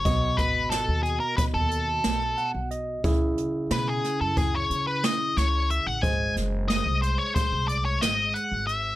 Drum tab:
HH |xxxxxxxxx|xxxxxxxxx|xxxxxxxxx|
SD |--o---o--|--oo--oo-|-oo---o--|
BD |oo--o----|o---o----|o---o----|